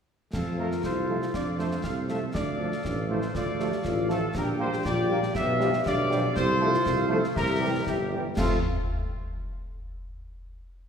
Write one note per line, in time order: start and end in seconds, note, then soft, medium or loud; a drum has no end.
0.33 0.76 F2 medium
0.33 1.30 F4 medium
0.33 0.80 A4 medium
0.33 0.57 A4 medium
0.33 0.80 F5 medium
0.33 concert bass drum medium
0.33 snare medium
0.33 crash soft
0.58 0.67 F3 medium
0.58 0.68 F3 soft
0.58 0.67 A3 medium
0.58 0.68 F4 soft
0.58 0.68 A4 soft
0.58 0.82 A#4 medium
0.72 snare soft
0.84 1.26 C2 medium
0.84 1.81 A4 medium
0.84 1.31 C5 medium
0.84 1.80 F5 soft
0.84 concert bass drum medium
0.84 snare medium
1.08 1.17 F3 medium
1.08 1.18 F3 soft
1.08 1.17 A3 soft
1.08 1.18 F4 soft
1.08 1.18 A4 soft
1.22 snare soft
1.34 1.76 F2 medium
1.34 1.85 D4 medium
1.34 1.57 D5 medium
1.34 concert bass drum medium
1.34 snare medium
1.58 1.68 F3 medium
1.58 1.69 F3 soft
1.58 1.67 A3 medium
1.58 1.69 F4 soft
1.58 1.69 A4 soft
1.58 1.82 C5 medium
1.58 snare soft
1.71 snare soft
1.83 2.26 C2 medium
1.83 2.34 C4 medium
1.83 2.32 A4 medium
1.83 1.95 F5 medium
1.83 2.32 F5 soft
1.83 concert bass drum medium
1.83 snare medium
2.08 2.18 F3 soft
2.08 2.19 F3 medium
2.08 2.18 A3 medium
2.08 2.19 F4 soft
2.08 2.19 A4 soft
2.08 2.20 E5 medium
2.08 snare soft
2.34 2.76 D2 medium
2.34 2.58 D4 soft
2.34 3.31 A4 medium
2.34 3.06 D5 medium
2.34 3.31 F5 soft
2.34 concert bass drum medium
2.34 snare medium
2.59 2.68 F3 medium
2.59 2.69 F3 soft
2.59 2.68 A3 medium
2.59 2.69 F4 soft
2.59 2.72 F4 medium
2.59 2.69 A4 medium
2.72 snare soft
2.85 3.27 A1 medium
2.85 2.96 D4 medium
2.85 concert bass drum medium
2.85 snare medium
3.08 3.18 F3 medium
3.08 3.19 F3 medium
3.08 3.18 A3 medium
3.08 3.21 E4 medium
3.08 3.19 F4 soft
3.08 3.19 A4 soft
3.08 3.35 C5 medium
3.22 snare soft
3.35 3.77 D2 medium
3.35 3.46 F4 medium
3.35 4.32 A4 medium
3.35 4.07 D5 medium
3.35 4.32 F5 medium
3.35 concert bass drum medium
3.35 snare medium
3.59 3.69 F3 medium
3.59 3.68 A3 medium
3.59 3.69 F4 medium
3.59 3.83 G4 medium
3.59 3.69 A4 medium
3.59 snare soft
3.72 snare soft
3.85 4.28 A1 medium
3.85 4.09 F4 medium
3.85 concert bass drum medium
3.85 snare medium
4.09 4.18 F3 medium
4.09 4.19 F3 medium
4.09 4.18 A3 medium
4.09 4.22 E4 medium
4.09 4.19 F4 medium
4.09 4.19 A4 medium
4.09 4.34 A4 medium
4.09 snare medium
4.35 4.78 A#1 medium
4.35 4.89 D4 medium
4.35 4.82 G4 medium
4.35 4.47 A#4 medium
4.35 4.86 G5 medium
4.35 concert bass drum medium
4.35 snare medium
4.35 crash soft
4.59 4.68 G3 medium
4.59 4.69 G3 medium
4.59 4.68 A#3 medium
4.59 4.69 D4 medium
4.59 4.69 G4 medium
4.59 4.84 C5 medium
4.73 snare soft
4.85 5.28 A#1 medium
4.85 5.13 F4 medium
4.85 5.33 G4 medium
4.85 5.33 D5 loud
4.85 5.33 G5 medium
4.85 concert bass drum medium
4.85 snare medium
5.09 5.19 G3 medium
5.09 5.19 A#3 medium
5.09 5.19 D4 medium
5.09 5.19 G4 medium
5.09 5.37 G4 medium
5.23 snare soft
5.35 5.79 B1 medium
5.35 5.83 B3 medium
5.35 5.83 G4 medium
5.35 5.82 E5 medium
5.35 5.85 F5 medium
5.35 concert bass drum medium
5.35 snare medium
5.59 5.69 F3 medium
5.59 5.70 F3 medium
5.59 5.69 G3 medium
5.59 5.70 D4 medium
5.59 5.70 G4 medium
5.59 snare soft
5.73 snare soft
5.86 6.29 B1 medium
5.86 6.34 D4 medium
5.86 6.33 G4 medium
5.86 6.33 D5 loud
5.86 6.33 F5 medium
5.86 concert bass drum medium
5.86 snare medium
6.10 6.20 F3 medium
6.10 6.21 F3 medium
6.10 6.19 G3 medium
6.10 6.21 D4 medium
6.10 6.21 G4 medium
6.10 snare medium
6.35 6.78 C2 medium
6.35 6.49 G4 medium
6.35 7.32 A4 medium
6.35 7.08 C5 loud
6.35 7.33 F5 medium
6.35 concert bass drum medium
6.35 snare medium
6.61 6.70 F3 medium
6.61 6.71 F3 medium
6.61 6.70 A3 medium
6.61 6.71 F4 medium
6.61 7.08 F4 medium
6.61 6.71 A4 medium
6.74 snare soft
6.86 7.24 C2 medium
6.86 concert bass drum medium
6.86 snare medium
7.08 7.18 F3 medium
7.08 7.21 F3 medium
7.08 7.18 A3 medium
7.08 7.21 F4 medium
7.08 7.21 A4 medium
7.08 7.23 C5 medium
7.24 snare soft
7.35 7.79 C2 medium
7.35 7.72 G4 medium
7.35 7.84 G4 medium
7.35 7.84 A#4 loud
7.35 7.72 E5 medium
7.35 concert bass drum medium
7.35 snare medium
7.60 7.69 E3 medium
7.60 7.69 G3 medium
7.60 7.71 G3 medium
7.60 7.71 E4 medium
7.60 7.71 G4 medium
7.86 8.29 G1 medium
7.86 7.98 E4 medium
7.86 7.98 G4 medium
7.86 8.34 G4 medium
7.86 8.11 E5 medium
7.86 concert bass drum medium
7.86 snare medium
8.12 8.21 E3 medium
8.12 8.21 G3 medium
8.12 8.22 G3 medium
8.12 8.22 E4 medium
8.12 8.22 G4 medium
8.36 8.59 F2 medium
8.36 8.58 F3 medium
8.36 8.58 A3 medium
8.36 8.59 C4 medium
8.36 8.59 F4 medium
8.36 8.59 A4 medium
8.36 8.58 F5 medium
8.36 concert bass drum medium
8.36 snare medium
8.36 crash medium